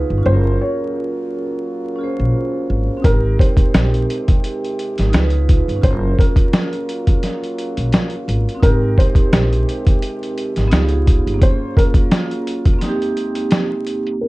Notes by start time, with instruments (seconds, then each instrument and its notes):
Already playing: french horn section C#3 B3 F4, vibraphone D#4 F4 G#4 B4
0.10 upright bass G1
0.18 vibraphone C#4
0.23 upright bass F#1, french horn section F#3 A#3 F4, vibraphone F4, upright piano C5
0.28 vibraphone G#4
0.33 vibraphone A#4
0.61 upright piano C#5
1.96 vibraphone C#4 F4
2.01 vibraphone G#4 C5
2.20 upright bass A#1
2.70 upright bass G#1
2.97 vibraphone C4
3.02 upright bass G#1, french horn section C3 G#3 G4, vibraphone D#4, upright piano A#4, kick, closed hi-hat
3.07 vibraphone G4
3.12 vibraphone A#4
3.39 upright piano C5, kick, closed hi-hat
3.57 kick, closed hi-hat
3.74 upright bass A#1, snare, closed hi-hat
3.94 closed hi-hat
4.10 closed hi-hat
4.28 kick, closed hi-hat
4.44 closed hi-hat
4.64 closed hi-hat
4.79 closed hi-hat
4.98 upright bass G#1, snare, closed hi-hat
5.10 french horn section C#3 B3 F4, vibraphone D#4 F4, closed hi-hat
5.14 upright bass C#2, vibraphone G#4 B4, snare
5.30 closed hi-hat
5.49 kick, closed hi-hat
5.68 upright bass G1, closed hi-hat
5.76 vibraphone C#4
5.81 upright bass F#1, french horn section F#3 A#3 F4, vibraphone F4, upright piano C5, kick, closed hi-hat
5.86 vibraphone G#4
5.91 vibraphone A#4
6.19 upright piano A#4, kick, closed hi-hat
6.36 kick, closed hi-hat
6.53 snare, closed hi-hat
6.73 closed hi-hat
6.89 closed hi-hat
7.07 kick, closed hi-hat
7.23 snare, closed hi-hat
7.44 closed hi-hat
7.58 closed hi-hat
7.77 upright bass A#1, closed hi-hat
7.92 snare, closed hi-hat
8.10 closed hi-hat
8.28 upright bass G#1, closed hi-hat
8.49 closed hi-hat
8.55 vibraphone C4
8.60 upright bass G#1, french horn section C3 G#3 G4, vibraphone D#4, upright piano A#4, kick, closed hi-hat
8.65 vibraphone G4
8.70 vibraphone A#4
8.98 upright piano C5, kick, closed hi-hat
9.15 kick, closed hi-hat
9.33 upright bass A#1, snare, closed hi-hat
9.53 closed hi-hat
9.69 closed hi-hat
9.86 kick, closed hi-hat
10.02 closed hi-hat
10.23 closed hi-hat
10.38 closed hi-hat
10.56 upright bass G#1, snare, closed hi-hat
10.68 french horn section C#3 B3 F4, vibraphone B3 D#4, closed hi-hat
10.72 upright bass C#2, vibraphone F4 G4, snare
10.82 vibraphone G#4
10.89 closed hi-hat
11.07 kick, closed hi-hat
11.27 upright bass G1, closed hi-hat
11.34 vibraphone A#3
11.39 french horn section F#3 A#3 F4, vibraphone C#4, upright piano C5, kick, closed hi-hat
11.44 vibraphone F4
11.49 vibraphone G#4
11.77 upright piano A#4, kick, closed hi-hat
11.94 kick, closed hi-hat
12.11 snare, closed hi-hat
12.31 closed hi-hat
12.47 closed hi-hat
12.65 kick, closed hi-hat
12.74 vibraphone A#3
12.79 french horn section C3 G#3 G4, vibraphone C4, snare, closed hi-hat
12.84 vibraphone D#4
12.89 vibraphone G4
13.02 closed hi-hat
13.17 closed hi-hat
13.35 closed hi-hat
13.51 snare, closed hi-hat
13.87 closed hi-hat
14.07 closed hi-hat
14.13 vibraphone A#3
14.18 vibraphone B3, upright piano A#4
14.23 vibraphone C4 D#4